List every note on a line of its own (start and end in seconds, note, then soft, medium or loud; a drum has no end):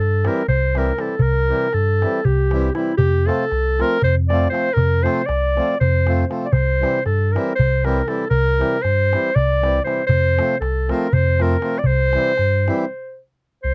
0.00 0.29 G2 medium
0.00 0.28 A4 medium
0.24 0.42 E3 medium
0.24 0.43 G3 soft
0.24 0.43 C4 soft
0.24 0.43 E4 medium
0.24 0.48 A#4 medium
0.24 darbuka tek medium
0.48 0.92 C2 medium
0.48 0.79 C5 medium
0.48 darbuka dum medium
0.74 0.92 E3 medium
0.74 0.92 G3 medium
0.74 0.93 C4 soft
0.74 0.93 E4 medium
0.74 1.02 A#4 medium
0.74 darbuka tek medium
0.97 1.15 E3 soft
0.97 1.15 G3 soft
0.97 1.15 C4 soft
0.97 1.15 E4 soft
0.97 1.23 A4 medium
0.97 darbuka tek medium
1.09 darbuka tek soft
1.19 1.53 C2 medium
1.19 1.75 A#4 loud
1.19 darbuka dum medium
1.35 darbuka tek soft
1.49 1.67 E3 medium
1.49 1.67 G3 medium
1.49 1.67 C4 medium
1.49 1.68 E4 medium
1.73 2.06 G2 medium
1.73 2.27 A4 medium
1.73 darbuka tek soft
2.02 2.20 E3 medium
2.02 2.20 G3 soft
2.02 2.20 C4 soft
2.02 2.21 E4 medium
2.02 darbuka tek medium
2.25 2.70 C2 loud
2.25 2.74 G4 medium
2.25 darbuka dum medium
2.39 darbuka tek soft
2.51 2.69 E3 medium
2.51 2.69 G3 medium
2.51 2.70 C4 medium
2.51 2.70 E4 medium
2.51 darbuka tek medium
2.63 darbuka tek soft
2.74 2.92 E3 soft
2.74 2.93 G3 soft
2.74 2.93 C4 soft
2.74 2.96 E4 medium
2.74 2.93 E4 soft
2.74 darbuka tek medium
2.97 3.30 F2 medium
2.97 3.28 G4 loud
2.97 darbuka dum medium
3.26 3.44 F3 medium
3.26 3.44 A3 medium
3.26 3.45 C4 medium
3.26 3.45 F4 medium
3.26 3.82 A4 medium
3.26 darbuka tek medium
3.51 3.83 C2 loud
3.51 darbuka tek soft
3.79 3.97 F3 medium
3.79 3.98 A3 medium
3.79 3.98 C4 soft
3.79 3.98 F4 medium
3.79 4.03 A#4 loud
3.79 darbuka tek medium
4.02 4.47 F2 loud
4.02 4.16 C5 medium
4.02 darbuka dum medium
4.17 darbuka tek soft
4.29 4.47 F3 medium
4.29 4.47 A3 medium
4.29 4.48 C4 soft
4.29 4.48 F4 medium
4.29 4.49 D5 medium
4.29 darbuka tek medium
4.49 4.69 F3 medium
4.49 4.69 A3 soft
4.49 4.69 C4 soft
4.49 4.70 F4 medium
4.49 4.75 C5 loud
4.54 darbuka tek medium
4.74 5.08 F2 medium
4.74 5.05 A#4 loud
4.74 darbuka dum medium
4.91 darbuka tek soft
5.02 5.21 F3 medium
5.02 5.22 A3 soft
5.02 5.22 C4 medium
5.02 5.22 F4 medium
5.02 5.27 C5 medium
5.02 darbuka tek medium
5.26 5.60 C2 loud
5.26 5.80 D5 loud
5.26 darbuka tek medium
5.43 darbuka tek soft
5.56 5.74 F3 soft
5.56 5.75 A3 soft
5.56 5.75 C4 medium
5.56 5.75 F4 medium
5.56 darbuka tek medium
5.70 darbuka tek soft
5.81 6.25 F2 loud
5.81 6.27 C5 medium
5.81 darbuka dum medium
5.95 darbuka tek soft
6.07 6.24 F3 medium
6.07 6.25 A3 medium
6.07 6.25 C4 medium
6.07 6.25 F4 medium
6.07 darbuka tek medium
6.19 darbuka tek soft
6.29 6.47 F3 soft
6.29 6.47 A3 soft
6.29 6.47 C4 soft
6.29 6.48 F4 medium
6.29 darbuka tek medium
6.43 6.54 D5 medium
6.43 darbuka tek soft
6.52 6.85 C2 loud
6.52 7.05 C5 loud
6.52 darbuka dum medium
6.69 darbuka tek soft
6.81 6.99 E3 medium
6.81 6.99 G3 medium
6.81 7.00 C4 medium
6.81 7.00 E4 medium
6.81 darbuka tek medium
7.05 7.37 G2 loud
7.05 7.33 A4 medium
7.05 darbuka tek soft
7.32 7.52 E3 medium
7.32 7.53 G3 soft
7.32 7.53 E4 medium
7.32 7.55 A#4 medium
7.36 7.53 C4 medium
7.36 darbuka tek medium
7.55 8.02 C2 medium
7.55 7.87 C5 medium
7.55 darbuka dum medium
7.84 8.02 E3 medium
7.84 8.02 G3 medium
7.84 8.02 C4 medium
7.84 8.02 E4 medium
7.84 8.09 A#4 medium
7.84 darbuka tek medium
8.07 8.24 E3 soft
8.07 8.25 G3 soft
8.07 8.25 C4 soft
8.07 8.25 E4 medium
8.07 8.29 A4 medium
8.07 darbuka tek medium
8.19 darbuka tek soft
8.30 8.63 C2 loud
8.30 8.84 A#4 loud
8.30 darbuka dum medium
8.46 darbuka tek soft
8.58 8.77 E3 medium
8.58 8.77 G3 medium
8.58 8.77 C4 soft
8.58 8.78 E4 medium
8.58 darbuka tek medium
8.82 9.16 G2 medium
8.82 9.37 C5 loud
8.82 darbuka tek soft
9.13 9.30 E3 soft
9.13 9.31 G3 soft
9.13 9.30 C4 medium
9.13 9.31 E4 medium
9.13 darbuka tek medium
9.35 9.80 C2 medium
9.35 9.84 D5 loud
9.35 darbuka dum medium
9.50 darbuka tek soft
9.62 9.79 E3 medium
9.62 9.79 G3 medium
9.62 9.79 C4 medium
9.62 9.80 E4 medium
9.62 darbuka tek medium
9.76 darbuka tek soft
9.84 10.02 E3 soft
9.84 10.02 G3 soft
9.84 10.02 C4 soft
9.84 10.03 E4 soft
9.84 10.06 C5 medium
9.84 darbuka tek medium
9.99 darbuka tek soft
10.07 10.40 F2 medium
10.07 10.56 C5 loud
10.07 darbuka dum medium
10.24 darbuka tek soft
10.38 10.55 F3 medium
10.38 10.55 A3 medium
10.38 10.55 C4 medium
10.38 10.56 F4 medium
10.38 darbuka tek medium
10.60 10.93 C2 loud
10.60 10.92 A4 medium
10.60 darbuka tek medium
10.89 11.07 F3 soft
10.89 11.07 A3 medium
10.89 11.07 C4 soft
10.89 11.08 F4 medium
10.89 11.15 A#4 medium
10.89 darbuka tek medium
11.13 11.57 F2 medium
11.13 11.43 C5 medium
11.13 darbuka dum medium
11.39 11.56 F3 soft
11.39 11.57 A3 medium
11.39 11.57 C4 medium
11.39 11.57 F4 medium
11.39 11.80 A#4 medium
11.39 darbuka tek medium
11.62 11.79 F3 soft
11.62 11.79 A3 soft
11.62 11.80 C4 soft
11.62 11.80 F4 medium
11.62 darbuka tek medium
11.79 11.88 D5 medium
11.84 12.17 C2 medium
11.84 13.18 C5 loud
11.84 darbuka dum medium
11.99 darbuka tek soft
12.13 12.31 E3 medium
12.13 12.32 G3 medium
12.13 12.32 C4 soft
12.13 12.33 E4 medium
12.13 darbuka tek medium
12.37 12.70 G2 medium
12.37 darbuka tek soft
12.53 darbuka tek soft
12.67 12.85 E3 medium
12.67 12.85 G3 medium
12.67 12.85 C4 medium
12.67 12.85 E4 medium
12.67 darbuka tek medium
12.80 darbuka tek soft
13.63 13.74 C2 loud
13.63 13.74 C5 loud